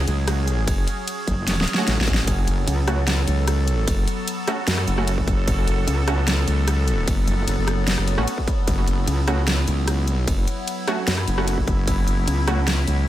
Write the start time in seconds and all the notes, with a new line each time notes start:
Already playing: F#3 C#4 G#4
0.08 C#2, closed hi-hat
0.28 cross-stick, closed hi-hat, ride
0.48 closed hi-hat
0.68 F#1, kick, closed hi-hat, ride
0.88 closed hi-hat
1.08 closed hi-hat, ride
1.27 F#1, kick, closed hi-hat
1.48 snare, closed hi-hat, ride
1.61 snare
1.68 closed hi-hat
1.74 A3 C#4 F#4, snare
1.88 A1, snare, closed hi-hat, ride
1.98 kick, snare
2.08 kick, closed hi-hat
2.14 snare
2.27 F#1 B3 A4, kick, closed hi-hat, ride
2.48 F#1, closed hi-hat
2.67 C#2, closed hi-hat, ride
2.87 A3 C#4 F#4, cross-stick, closed hi-hat
3.08 cross-stick, snare, closed hi-hat, ride
3.28 C#2, closed hi-hat
3.48 cross-stick, closed hi-hat, ride
3.68 closed hi-hat
3.88 F#1, kick, closed hi-hat, ride
4.08 closed hi-hat
4.28 closed hi-hat, ride
4.47 A3 C#4 F#4, cross-stick, closed hi-hat
4.68 F#2, snare, closed hi-hat, ride
4.78 cross-stick
4.88 F#1, closed hi-hat
4.98 A3 C#4 F#4, cross-stick
5.08 closed hi-hat, ride
5.18 kick
5.28 kick, closed hi-hat
5.48 F#1, kick, closed hi-hat, ride
5.68 F#1, closed hi-hat
5.88 C#2, closed hi-hat, ride
6.07 A3 C#4 F#4, cross-stick, closed hi-hat
6.28 cross-stick, snare, closed hi-hat, ride
6.48 C#2, closed hi-hat
6.68 cross-stick, closed hi-hat, ride
6.88 closed hi-hat
7.08 F#1, kick, closed hi-hat, ride
7.28 F#1, closed hi-hat
7.48 F#1, closed hi-hat, ride
7.58 F#1
7.68 cross-stick, closed hi-hat
7.88 snare, closed hi-hat, ride
7.98 F#1, cross-stick
8.08 closed hi-hat
8.18 A1 A3 C#4 F#4, cross-stick
8.28 closed hi-hat, ride
8.38 kick
8.48 kick, closed hi-hat
8.68 F#1 E4, kick, closed hi-hat, ride
8.87 F#1, closed hi-hat
9.07 C#2, closed hi-hat, ride
9.27 A3 C#4 F#4, cross-stick, closed hi-hat
9.48 cross-stick, snare, closed hi-hat, ride
9.68 C#2, closed hi-hat
9.88 cross-stick, closed hi-hat, ride
10.08 C2, closed hi-hat
10.28 F#1, kick, closed hi-hat, ride
10.48 closed hi-hat
10.68 closed hi-hat, ride
10.88 A3 C#4 F#4, cross-stick, closed hi-hat
11.08 F#2, snare, closed hi-hat, ride
11.18 cross-stick
11.28 F#1, closed hi-hat
11.38 A3 C#4 F#4, cross-stick
11.48 closed hi-hat, ride
11.58 kick
11.68 kick, closed hi-hat
11.88 F#1, kick, closed hi-hat, ride
12.08 F#1, closed hi-hat
12.28 C#2, closed hi-hat, ride
12.47 A3 C#4 F#4, cross-stick, closed hi-hat
12.68 cross-stick, snare, closed hi-hat, ride
12.88 C#2, closed hi-hat